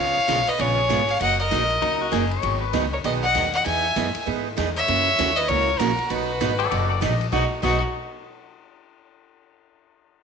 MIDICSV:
0, 0, Header, 1, 8, 480
1, 0, Start_track
1, 0, Key_signature, 5, "major"
1, 0, Tempo, 305810
1, 1891, Time_signature, 4, 2, 24, 8
1, 16057, End_track
2, 0, Start_track
2, 0, Title_t, "Fiddle"
2, 0, Program_c, 0, 110
2, 0, Note_on_c, 0, 77, 101
2, 764, Note_on_c, 0, 75, 89
2, 788, Note_off_c, 0, 77, 0
2, 952, Note_on_c, 0, 73, 101
2, 975, Note_off_c, 0, 75, 0
2, 1731, Note_on_c, 0, 77, 94
2, 1755, Note_off_c, 0, 73, 0
2, 1886, Note_off_c, 0, 77, 0
2, 1895, Note_on_c, 0, 78, 100
2, 2167, Note_off_c, 0, 78, 0
2, 2192, Note_on_c, 0, 75, 100
2, 3569, Note_off_c, 0, 75, 0
2, 4603, Note_on_c, 0, 73, 72
2, 4685, Note_off_c, 0, 73, 0
2, 4784, Note_on_c, 0, 75, 85
2, 4914, Note_off_c, 0, 75, 0
2, 5061, Note_on_c, 0, 78, 99
2, 5512, Note_off_c, 0, 78, 0
2, 5549, Note_on_c, 0, 78, 98
2, 5724, Note_off_c, 0, 78, 0
2, 5737, Note_on_c, 0, 80, 99
2, 6635, Note_off_c, 0, 80, 0
2, 7479, Note_on_c, 0, 76, 109
2, 8417, Note_on_c, 0, 75, 93
2, 8440, Note_off_c, 0, 76, 0
2, 8603, Note_on_c, 0, 73, 99
2, 8626, Note_off_c, 0, 75, 0
2, 9083, Note_on_c, 0, 70, 84
2, 9106, Note_off_c, 0, 73, 0
2, 9570, Note_on_c, 0, 71, 81
2, 9593, Note_off_c, 0, 70, 0
2, 11010, Note_off_c, 0, 71, 0
2, 11494, Note_on_c, 0, 66, 76
2, 11657, Note_off_c, 0, 66, 0
2, 11982, Note_on_c, 0, 66, 90
2, 12249, Note_off_c, 0, 66, 0
2, 16057, End_track
3, 0, Start_track
3, 0, Title_t, "Pedal steel guitar"
3, 0, Program_c, 1, 26
3, 2858, Note_on_c, 1, 63, 89
3, 3141, Note_off_c, 1, 63, 0
3, 3162, Note_on_c, 1, 66, 67
3, 3332, Note_on_c, 1, 68, 87
3, 3337, Note_off_c, 1, 66, 0
3, 3618, Note_off_c, 1, 68, 0
3, 3621, Note_on_c, 1, 73, 85
3, 4088, Note_off_c, 1, 73, 0
3, 4094, Note_on_c, 1, 71, 99
3, 4426, Note_off_c, 1, 71, 0
3, 10341, Note_on_c, 1, 69, 75
3, 10349, Note_on_c, 1, 74, 88
3, 10499, Note_off_c, 1, 69, 0
3, 10514, Note_off_c, 1, 74, 0
3, 10518, Note_on_c, 1, 69, 79
3, 10533, Note_on_c, 1, 74, 87
3, 10797, Note_off_c, 1, 69, 0
3, 10809, Note_off_c, 1, 74, 0
3, 10819, Note_on_c, 1, 69, 60
3, 10827, Note_on_c, 1, 74, 65
3, 10996, Note_off_c, 1, 69, 0
3, 11008, Note_off_c, 1, 74, 0
3, 11017, Note_on_c, 1, 75, 83
3, 11390, Note_off_c, 1, 75, 0
3, 11498, Note_on_c, 1, 75, 91
3, 11659, Note_off_c, 1, 75, 0
3, 11983, Note_on_c, 1, 75, 88
3, 12250, Note_off_c, 1, 75, 0
3, 16057, End_track
4, 0, Start_track
4, 0, Title_t, "Fiddle"
4, 0, Program_c, 2, 110
4, 0, Note_on_c, 2, 73, 92
4, 750, Note_on_c, 2, 71, 81
4, 774, Note_off_c, 2, 73, 0
4, 951, Note_on_c, 2, 68, 83
4, 974, Note_off_c, 2, 71, 0
4, 1721, Note_on_c, 2, 73, 83
4, 1745, Note_off_c, 2, 68, 0
4, 1900, Note_off_c, 2, 73, 0
4, 1911, Note_on_c, 2, 75, 95
4, 2176, Note_off_c, 2, 75, 0
4, 2194, Note_on_c, 2, 70, 80
4, 3570, Note_off_c, 2, 70, 0
4, 4596, Note_on_c, 2, 70, 66
4, 4679, Note_off_c, 2, 70, 0
4, 4795, Note_on_c, 2, 71, 73
4, 4923, Note_off_c, 2, 71, 0
4, 5074, Note_on_c, 2, 75, 83
4, 5520, Note_off_c, 2, 75, 0
4, 5547, Note_on_c, 2, 75, 78
4, 5723, Note_off_c, 2, 75, 0
4, 5741, Note_on_c, 2, 76, 86
4, 6637, Note_off_c, 2, 76, 0
4, 7493, Note_on_c, 2, 73, 98
4, 8435, Note_on_c, 2, 71, 85
4, 8459, Note_off_c, 2, 73, 0
4, 8615, Note_on_c, 2, 70, 77
4, 8638, Note_off_c, 2, 71, 0
4, 9100, Note_on_c, 2, 66, 74
4, 9123, Note_off_c, 2, 70, 0
4, 9582, Note_off_c, 2, 66, 0
4, 9582, Note_on_c, 2, 66, 76
4, 11017, Note_off_c, 2, 66, 0
4, 11501, Note_on_c, 2, 63, 70
4, 11661, Note_off_c, 2, 63, 0
4, 11966, Note_on_c, 2, 63, 74
4, 12241, Note_off_c, 2, 63, 0
4, 16057, End_track
5, 0, Start_track
5, 0, Title_t, "Steel-string acoustic guitar"
5, 0, Program_c, 3, 25
5, 0, Note_on_c, 3, 49, 58
5, 0, Note_on_c, 3, 56, 61
5, 0, Note_on_c, 3, 59, 62
5, 0, Note_on_c, 3, 65, 61
5, 0, Note_on_c, 3, 68, 59
5, 272, Note_off_c, 3, 49, 0
5, 275, Note_off_c, 3, 56, 0
5, 276, Note_off_c, 3, 59, 0
5, 279, Note_off_c, 3, 65, 0
5, 283, Note_off_c, 3, 68, 0
5, 434, Note_on_c, 3, 49, 77
5, 441, Note_on_c, 3, 56, 75
5, 447, Note_on_c, 3, 59, 77
5, 449, Note_on_c, 3, 65, 82
5, 453, Note_on_c, 3, 68, 87
5, 614, Note_off_c, 3, 49, 0
5, 617, Note_off_c, 3, 56, 0
5, 620, Note_off_c, 3, 59, 0
5, 621, Note_off_c, 3, 65, 0
5, 623, Note_off_c, 3, 68, 0
5, 916, Note_on_c, 3, 49, 66
5, 926, Note_on_c, 3, 56, 61
5, 930, Note_on_c, 3, 59, 59
5, 933, Note_on_c, 3, 65, 61
5, 935, Note_on_c, 3, 68, 67
5, 1237, Note_off_c, 3, 49, 0
5, 1242, Note_off_c, 3, 56, 0
5, 1244, Note_off_c, 3, 59, 0
5, 1246, Note_off_c, 3, 65, 0
5, 1247, Note_off_c, 3, 68, 0
5, 1400, Note_on_c, 3, 49, 74
5, 1404, Note_on_c, 3, 56, 78
5, 1410, Note_on_c, 3, 59, 78
5, 1412, Note_on_c, 3, 65, 80
5, 1418, Note_on_c, 3, 68, 82
5, 1578, Note_off_c, 3, 49, 0
5, 1580, Note_off_c, 3, 56, 0
5, 1583, Note_off_c, 3, 59, 0
5, 1584, Note_off_c, 3, 65, 0
5, 1587, Note_off_c, 3, 68, 0
5, 1881, Note_on_c, 3, 54, 54
5, 1887, Note_on_c, 3, 58, 54
5, 1892, Note_on_c, 3, 63, 57
5, 1898, Note_on_c, 3, 66, 59
5, 2201, Note_off_c, 3, 54, 0
5, 2204, Note_off_c, 3, 58, 0
5, 2207, Note_off_c, 3, 63, 0
5, 2210, Note_off_c, 3, 66, 0
5, 2365, Note_on_c, 3, 54, 72
5, 2372, Note_on_c, 3, 58, 78
5, 2377, Note_on_c, 3, 63, 78
5, 2383, Note_on_c, 3, 66, 73
5, 2542, Note_off_c, 3, 54, 0
5, 2545, Note_off_c, 3, 58, 0
5, 2548, Note_off_c, 3, 63, 0
5, 2551, Note_off_c, 3, 66, 0
5, 2846, Note_on_c, 3, 54, 59
5, 2858, Note_on_c, 3, 58, 60
5, 2861, Note_on_c, 3, 66, 63
5, 2862, Note_on_c, 3, 63, 64
5, 3165, Note_off_c, 3, 54, 0
5, 3171, Note_off_c, 3, 58, 0
5, 3172, Note_off_c, 3, 63, 0
5, 3172, Note_off_c, 3, 66, 0
5, 3320, Note_on_c, 3, 58, 70
5, 3321, Note_on_c, 3, 54, 70
5, 3327, Note_on_c, 3, 63, 77
5, 3333, Note_on_c, 3, 66, 74
5, 3501, Note_off_c, 3, 54, 0
5, 3501, Note_off_c, 3, 58, 0
5, 3504, Note_off_c, 3, 63, 0
5, 3507, Note_off_c, 3, 66, 0
5, 3802, Note_on_c, 3, 51, 58
5, 3809, Note_on_c, 3, 54, 57
5, 3816, Note_on_c, 3, 59, 54
5, 3817, Note_on_c, 3, 68, 61
5, 3819, Note_on_c, 3, 63, 59
5, 4123, Note_off_c, 3, 51, 0
5, 4127, Note_off_c, 3, 54, 0
5, 4130, Note_off_c, 3, 59, 0
5, 4131, Note_off_c, 3, 68, 0
5, 4132, Note_off_c, 3, 63, 0
5, 4287, Note_on_c, 3, 51, 71
5, 4288, Note_on_c, 3, 54, 77
5, 4294, Note_on_c, 3, 59, 75
5, 4296, Note_on_c, 3, 63, 88
5, 4302, Note_on_c, 3, 68, 84
5, 4465, Note_off_c, 3, 51, 0
5, 4465, Note_off_c, 3, 54, 0
5, 4468, Note_off_c, 3, 59, 0
5, 4469, Note_off_c, 3, 63, 0
5, 4472, Note_off_c, 3, 68, 0
5, 4776, Note_on_c, 3, 51, 61
5, 4782, Note_on_c, 3, 54, 66
5, 4785, Note_on_c, 3, 59, 65
5, 4791, Note_on_c, 3, 63, 63
5, 4792, Note_on_c, 3, 68, 69
5, 5091, Note_off_c, 3, 51, 0
5, 5094, Note_off_c, 3, 54, 0
5, 5095, Note_off_c, 3, 59, 0
5, 5098, Note_off_c, 3, 63, 0
5, 5099, Note_off_c, 3, 68, 0
5, 5245, Note_on_c, 3, 51, 69
5, 5251, Note_on_c, 3, 54, 66
5, 5259, Note_on_c, 3, 59, 77
5, 5261, Note_on_c, 3, 63, 76
5, 5267, Note_on_c, 3, 68, 84
5, 5424, Note_off_c, 3, 51, 0
5, 5427, Note_off_c, 3, 54, 0
5, 5431, Note_off_c, 3, 59, 0
5, 5432, Note_off_c, 3, 63, 0
5, 5435, Note_off_c, 3, 68, 0
5, 5730, Note_on_c, 3, 52, 55
5, 5739, Note_on_c, 3, 59, 59
5, 5740, Note_on_c, 3, 63, 54
5, 5746, Note_on_c, 3, 68, 60
5, 6048, Note_off_c, 3, 52, 0
5, 6053, Note_off_c, 3, 59, 0
5, 6053, Note_off_c, 3, 63, 0
5, 6056, Note_off_c, 3, 68, 0
5, 6217, Note_on_c, 3, 52, 73
5, 6228, Note_on_c, 3, 59, 77
5, 6231, Note_on_c, 3, 63, 84
5, 6236, Note_on_c, 3, 68, 79
5, 6390, Note_off_c, 3, 52, 0
5, 6396, Note_off_c, 3, 59, 0
5, 6397, Note_off_c, 3, 63, 0
5, 6400, Note_off_c, 3, 68, 0
5, 6690, Note_on_c, 3, 52, 61
5, 6698, Note_on_c, 3, 59, 61
5, 6703, Note_on_c, 3, 63, 57
5, 6706, Note_on_c, 3, 68, 67
5, 7008, Note_off_c, 3, 52, 0
5, 7012, Note_off_c, 3, 59, 0
5, 7014, Note_off_c, 3, 63, 0
5, 7016, Note_off_c, 3, 68, 0
5, 7165, Note_on_c, 3, 52, 76
5, 7172, Note_on_c, 3, 59, 77
5, 7180, Note_on_c, 3, 63, 82
5, 7187, Note_on_c, 3, 68, 90
5, 7344, Note_off_c, 3, 52, 0
5, 7347, Note_off_c, 3, 59, 0
5, 7351, Note_off_c, 3, 63, 0
5, 7355, Note_off_c, 3, 68, 0
5, 7652, Note_on_c, 3, 49, 54
5, 7660, Note_on_c, 3, 52, 55
5, 7665, Note_on_c, 3, 58, 53
5, 7668, Note_on_c, 3, 61, 62
5, 7668, Note_on_c, 3, 66, 58
5, 7968, Note_off_c, 3, 49, 0
5, 7973, Note_off_c, 3, 52, 0
5, 7975, Note_off_c, 3, 58, 0
5, 7977, Note_off_c, 3, 61, 0
5, 7977, Note_off_c, 3, 66, 0
5, 8134, Note_on_c, 3, 49, 78
5, 8144, Note_on_c, 3, 52, 78
5, 8145, Note_on_c, 3, 58, 81
5, 8151, Note_on_c, 3, 61, 88
5, 8154, Note_on_c, 3, 66, 83
5, 8308, Note_off_c, 3, 49, 0
5, 8313, Note_off_c, 3, 52, 0
5, 8313, Note_off_c, 3, 58, 0
5, 8317, Note_off_c, 3, 61, 0
5, 8318, Note_off_c, 3, 66, 0
5, 8609, Note_on_c, 3, 49, 60
5, 8620, Note_on_c, 3, 52, 60
5, 8623, Note_on_c, 3, 58, 64
5, 8624, Note_on_c, 3, 61, 62
5, 8634, Note_on_c, 3, 66, 66
5, 8926, Note_off_c, 3, 49, 0
5, 8932, Note_off_c, 3, 52, 0
5, 8933, Note_off_c, 3, 58, 0
5, 8934, Note_off_c, 3, 61, 0
5, 8939, Note_off_c, 3, 66, 0
5, 9092, Note_on_c, 3, 49, 78
5, 9099, Note_on_c, 3, 52, 81
5, 9103, Note_on_c, 3, 58, 69
5, 9105, Note_on_c, 3, 61, 81
5, 9114, Note_on_c, 3, 66, 88
5, 9266, Note_off_c, 3, 49, 0
5, 9270, Note_off_c, 3, 52, 0
5, 9272, Note_off_c, 3, 58, 0
5, 9273, Note_off_c, 3, 61, 0
5, 9277, Note_off_c, 3, 66, 0
5, 9574, Note_on_c, 3, 47, 58
5, 9580, Note_on_c, 3, 54, 60
5, 9583, Note_on_c, 3, 59, 62
5, 9589, Note_on_c, 3, 63, 56
5, 9595, Note_on_c, 3, 66, 65
5, 9888, Note_off_c, 3, 47, 0
5, 9891, Note_off_c, 3, 54, 0
5, 9893, Note_off_c, 3, 59, 0
5, 9896, Note_off_c, 3, 63, 0
5, 9899, Note_off_c, 3, 66, 0
5, 10048, Note_on_c, 3, 47, 71
5, 10057, Note_on_c, 3, 54, 75
5, 10060, Note_on_c, 3, 59, 71
5, 10062, Note_on_c, 3, 63, 86
5, 10065, Note_on_c, 3, 66, 84
5, 10224, Note_off_c, 3, 47, 0
5, 10228, Note_off_c, 3, 54, 0
5, 10229, Note_off_c, 3, 59, 0
5, 10231, Note_off_c, 3, 63, 0
5, 10232, Note_off_c, 3, 66, 0
5, 10533, Note_on_c, 3, 47, 63
5, 10539, Note_on_c, 3, 54, 61
5, 10542, Note_on_c, 3, 59, 64
5, 10547, Note_on_c, 3, 63, 65
5, 10553, Note_on_c, 3, 66, 66
5, 10847, Note_off_c, 3, 47, 0
5, 10850, Note_off_c, 3, 54, 0
5, 10851, Note_off_c, 3, 59, 0
5, 10854, Note_off_c, 3, 63, 0
5, 10857, Note_off_c, 3, 66, 0
5, 11003, Note_on_c, 3, 47, 76
5, 11008, Note_on_c, 3, 54, 70
5, 11011, Note_on_c, 3, 59, 72
5, 11020, Note_on_c, 3, 63, 78
5, 11022, Note_on_c, 3, 66, 76
5, 11180, Note_off_c, 3, 47, 0
5, 11183, Note_off_c, 3, 54, 0
5, 11185, Note_off_c, 3, 59, 0
5, 11189, Note_off_c, 3, 63, 0
5, 11190, Note_off_c, 3, 66, 0
5, 11489, Note_on_c, 3, 47, 67
5, 11495, Note_on_c, 3, 54, 67
5, 11498, Note_on_c, 3, 59, 74
5, 11508, Note_on_c, 3, 63, 75
5, 11516, Note_on_c, 3, 66, 78
5, 11666, Note_off_c, 3, 47, 0
5, 11670, Note_off_c, 3, 54, 0
5, 11671, Note_off_c, 3, 59, 0
5, 11676, Note_off_c, 3, 63, 0
5, 11680, Note_off_c, 3, 66, 0
5, 11963, Note_on_c, 3, 47, 68
5, 11972, Note_on_c, 3, 54, 71
5, 11980, Note_on_c, 3, 59, 73
5, 11988, Note_on_c, 3, 63, 76
5, 11993, Note_on_c, 3, 66, 82
5, 12201, Note_off_c, 3, 47, 0
5, 12206, Note_off_c, 3, 54, 0
5, 12210, Note_off_c, 3, 59, 0
5, 12214, Note_off_c, 3, 63, 0
5, 12217, Note_off_c, 3, 66, 0
5, 16057, End_track
6, 0, Start_track
6, 0, Title_t, "Upright bass"
6, 0, Program_c, 4, 32
6, 0, Note_on_c, 4, 37, 80
6, 243, Note_off_c, 4, 37, 0
6, 451, Note_on_c, 4, 35, 90
6, 723, Note_off_c, 4, 35, 0
6, 936, Note_on_c, 4, 34, 91
6, 1400, Note_off_c, 4, 34, 0
6, 1418, Note_on_c, 4, 32, 85
6, 1881, Note_off_c, 4, 32, 0
6, 1896, Note_on_c, 4, 30, 81
6, 2361, Note_off_c, 4, 30, 0
6, 2380, Note_on_c, 4, 34, 89
6, 2843, Note_off_c, 4, 34, 0
6, 2856, Note_on_c, 4, 37, 87
6, 3322, Note_off_c, 4, 37, 0
6, 3337, Note_on_c, 4, 30, 88
6, 3803, Note_off_c, 4, 30, 0
6, 3816, Note_on_c, 4, 32, 85
6, 4283, Note_off_c, 4, 32, 0
6, 4296, Note_on_c, 4, 37, 97
6, 4762, Note_off_c, 4, 37, 0
6, 4777, Note_on_c, 4, 35, 83
6, 5243, Note_off_c, 4, 35, 0
6, 5257, Note_on_c, 4, 39, 92
6, 5723, Note_off_c, 4, 39, 0
6, 5743, Note_on_c, 4, 40, 79
6, 6206, Note_off_c, 4, 40, 0
6, 6220, Note_on_c, 4, 42, 94
6, 6492, Note_off_c, 4, 42, 0
6, 6704, Note_on_c, 4, 44, 84
6, 7166, Note_off_c, 4, 44, 0
6, 7187, Note_on_c, 4, 40, 96
6, 7648, Note_off_c, 4, 40, 0
6, 7665, Note_on_c, 4, 42, 84
6, 8126, Note_off_c, 4, 42, 0
6, 8147, Note_on_c, 4, 39, 93
6, 8607, Note_off_c, 4, 39, 0
6, 8617, Note_on_c, 4, 37, 87
6, 9082, Note_off_c, 4, 37, 0
6, 9101, Note_on_c, 4, 34, 96
6, 9371, Note_off_c, 4, 34, 0
6, 9580, Note_on_c, 4, 35, 87
6, 10043, Note_off_c, 4, 35, 0
6, 10059, Note_on_c, 4, 32, 91
6, 10522, Note_off_c, 4, 32, 0
6, 10542, Note_on_c, 4, 30, 90
6, 11003, Note_off_c, 4, 30, 0
6, 11020, Note_on_c, 4, 34, 94
6, 11481, Note_off_c, 4, 34, 0
6, 11499, Note_on_c, 4, 35, 90
6, 11660, Note_off_c, 4, 35, 0
6, 11979, Note_on_c, 4, 35, 95
6, 12248, Note_off_c, 4, 35, 0
6, 16057, End_track
7, 0, Start_track
7, 0, Title_t, "Muted upright bass strokes"
7, 275, Note_on_c, 9, 29, 41
7, 432, Note_off_c, 9, 29, 0
7, 753, Note_on_c, 9, 29, 40
7, 910, Note_off_c, 9, 29, 0
7, 6520, Note_on_c, 9, 29, 39
7, 6677, Note_off_c, 9, 29, 0
7, 9392, Note_on_c, 9, 29, 38
7, 9549, Note_off_c, 9, 29, 0
7, 16057, End_track
8, 0, Start_track
8, 0, Title_t, "Drums"
8, 447, Note_on_c, 9, 38, 68
8, 447, Note_on_c, 9, 44, 64
8, 447, Note_on_c, 9, 51, 68
8, 450, Note_on_c, 9, 36, 20
8, 604, Note_off_c, 9, 38, 0
8, 604, Note_off_c, 9, 44, 0
8, 604, Note_off_c, 9, 51, 0
8, 607, Note_off_c, 9, 36, 0
8, 742, Note_on_c, 9, 51, 47
8, 899, Note_off_c, 9, 51, 0
8, 932, Note_on_c, 9, 36, 27
8, 932, Note_on_c, 9, 51, 72
8, 1089, Note_off_c, 9, 36, 0
8, 1089, Note_off_c, 9, 51, 0
8, 1414, Note_on_c, 9, 36, 23
8, 1414, Note_on_c, 9, 38, 68
8, 1414, Note_on_c, 9, 44, 62
8, 1414, Note_on_c, 9, 51, 79
8, 1571, Note_off_c, 9, 36, 0
8, 1571, Note_off_c, 9, 38, 0
8, 1571, Note_off_c, 9, 44, 0
8, 1571, Note_off_c, 9, 51, 0
8, 1706, Note_on_c, 9, 51, 48
8, 1863, Note_off_c, 9, 51, 0
8, 1893, Note_on_c, 9, 51, 70
8, 1895, Note_on_c, 9, 36, 23
8, 2050, Note_off_c, 9, 51, 0
8, 2052, Note_off_c, 9, 36, 0
8, 2190, Note_on_c, 9, 51, 47
8, 2347, Note_off_c, 9, 51, 0
8, 2373, Note_on_c, 9, 38, 71
8, 2373, Note_on_c, 9, 44, 64
8, 2373, Note_on_c, 9, 51, 68
8, 2530, Note_off_c, 9, 38, 0
8, 2530, Note_off_c, 9, 44, 0
8, 2530, Note_off_c, 9, 51, 0
8, 2673, Note_on_c, 9, 51, 48
8, 2830, Note_off_c, 9, 51, 0
8, 2856, Note_on_c, 9, 36, 25
8, 2859, Note_on_c, 9, 51, 63
8, 3013, Note_off_c, 9, 36, 0
8, 3016, Note_off_c, 9, 51, 0
8, 3334, Note_on_c, 9, 36, 25
8, 3336, Note_on_c, 9, 38, 65
8, 3336, Note_on_c, 9, 44, 56
8, 3336, Note_on_c, 9, 51, 65
8, 3491, Note_off_c, 9, 36, 0
8, 3493, Note_off_c, 9, 38, 0
8, 3493, Note_off_c, 9, 44, 0
8, 3493, Note_off_c, 9, 51, 0
8, 3630, Note_on_c, 9, 51, 47
8, 3787, Note_off_c, 9, 51, 0
8, 3814, Note_on_c, 9, 36, 25
8, 3814, Note_on_c, 9, 51, 63
8, 3971, Note_off_c, 9, 36, 0
8, 3971, Note_off_c, 9, 51, 0
8, 4290, Note_on_c, 9, 38, 66
8, 4290, Note_on_c, 9, 44, 61
8, 4290, Note_on_c, 9, 51, 63
8, 4294, Note_on_c, 9, 36, 24
8, 4447, Note_off_c, 9, 38, 0
8, 4447, Note_off_c, 9, 44, 0
8, 4447, Note_off_c, 9, 51, 0
8, 4451, Note_off_c, 9, 36, 0
8, 4773, Note_on_c, 9, 51, 65
8, 4774, Note_on_c, 9, 36, 20
8, 4930, Note_off_c, 9, 51, 0
8, 4931, Note_off_c, 9, 36, 0
8, 5253, Note_on_c, 9, 38, 74
8, 5253, Note_on_c, 9, 44, 57
8, 5253, Note_on_c, 9, 51, 72
8, 5410, Note_off_c, 9, 38, 0
8, 5410, Note_off_c, 9, 44, 0
8, 5410, Note_off_c, 9, 51, 0
8, 5549, Note_on_c, 9, 51, 48
8, 5706, Note_off_c, 9, 51, 0
8, 5738, Note_on_c, 9, 51, 63
8, 5739, Note_on_c, 9, 36, 23
8, 5895, Note_off_c, 9, 51, 0
8, 5896, Note_off_c, 9, 36, 0
8, 6219, Note_on_c, 9, 38, 65
8, 6219, Note_on_c, 9, 44, 60
8, 6219, Note_on_c, 9, 51, 70
8, 6220, Note_on_c, 9, 36, 25
8, 6376, Note_off_c, 9, 38, 0
8, 6376, Note_off_c, 9, 44, 0
8, 6376, Note_off_c, 9, 51, 0
8, 6377, Note_off_c, 9, 36, 0
8, 6509, Note_on_c, 9, 51, 73
8, 6665, Note_off_c, 9, 51, 0
8, 6701, Note_on_c, 9, 36, 27
8, 6858, Note_off_c, 9, 36, 0
8, 7180, Note_on_c, 9, 38, 71
8, 7180, Note_on_c, 9, 44, 63
8, 7180, Note_on_c, 9, 51, 72
8, 7182, Note_on_c, 9, 36, 25
8, 7337, Note_off_c, 9, 38, 0
8, 7337, Note_off_c, 9, 44, 0
8, 7337, Note_off_c, 9, 51, 0
8, 7339, Note_off_c, 9, 36, 0
8, 7476, Note_on_c, 9, 51, 47
8, 7633, Note_off_c, 9, 51, 0
8, 7661, Note_on_c, 9, 36, 24
8, 7662, Note_on_c, 9, 51, 64
8, 7818, Note_off_c, 9, 36, 0
8, 7819, Note_off_c, 9, 51, 0
8, 8139, Note_on_c, 9, 38, 67
8, 8139, Note_on_c, 9, 44, 64
8, 8139, Note_on_c, 9, 51, 73
8, 8141, Note_on_c, 9, 36, 23
8, 8296, Note_off_c, 9, 38, 0
8, 8296, Note_off_c, 9, 44, 0
8, 8296, Note_off_c, 9, 51, 0
8, 8298, Note_off_c, 9, 36, 0
8, 8429, Note_on_c, 9, 51, 51
8, 8586, Note_off_c, 9, 51, 0
8, 8611, Note_on_c, 9, 51, 60
8, 8617, Note_on_c, 9, 36, 28
8, 8768, Note_off_c, 9, 51, 0
8, 8774, Note_off_c, 9, 36, 0
8, 9095, Note_on_c, 9, 38, 71
8, 9095, Note_on_c, 9, 44, 62
8, 9095, Note_on_c, 9, 51, 68
8, 9097, Note_on_c, 9, 36, 18
8, 9252, Note_off_c, 9, 38, 0
8, 9252, Note_off_c, 9, 44, 0
8, 9252, Note_off_c, 9, 51, 0
8, 9254, Note_off_c, 9, 36, 0
8, 9393, Note_on_c, 9, 51, 45
8, 9550, Note_off_c, 9, 51, 0
8, 9575, Note_on_c, 9, 51, 66
8, 9577, Note_on_c, 9, 36, 20
8, 9732, Note_off_c, 9, 51, 0
8, 9734, Note_off_c, 9, 36, 0
8, 10056, Note_on_c, 9, 36, 22
8, 10056, Note_on_c, 9, 38, 68
8, 10056, Note_on_c, 9, 44, 52
8, 10056, Note_on_c, 9, 51, 70
8, 10213, Note_off_c, 9, 36, 0
8, 10213, Note_off_c, 9, 38, 0
8, 10213, Note_off_c, 9, 44, 0
8, 10213, Note_off_c, 9, 51, 0
8, 10352, Note_on_c, 9, 51, 48
8, 10509, Note_off_c, 9, 51, 0
8, 10538, Note_on_c, 9, 36, 23
8, 10539, Note_on_c, 9, 51, 67
8, 10695, Note_off_c, 9, 36, 0
8, 10696, Note_off_c, 9, 51, 0
8, 11018, Note_on_c, 9, 36, 20
8, 11019, Note_on_c, 9, 38, 73
8, 11019, Note_on_c, 9, 44, 65
8, 11019, Note_on_c, 9, 51, 70
8, 11174, Note_off_c, 9, 36, 0
8, 11176, Note_off_c, 9, 38, 0
8, 11176, Note_off_c, 9, 44, 0
8, 11176, Note_off_c, 9, 51, 0
8, 11313, Note_on_c, 9, 51, 48
8, 11470, Note_off_c, 9, 51, 0
8, 11497, Note_on_c, 9, 38, 86
8, 11498, Note_on_c, 9, 36, 95
8, 11654, Note_off_c, 9, 38, 0
8, 11655, Note_off_c, 9, 36, 0
8, 11977, Note_on_c, 9, 38, 82
8, 11977, Note_on_c, 9, 49, 75
8, 11978, Note_on_c, 9, 36, 97
8, 12134, Note_off_c, 9, 38, 0
8, 12134, Note_off_c, 9, 49, 0
8, 12135, Note_off_c, 9, 36, 0
8, 16057, End_track
0, 0, End_of_file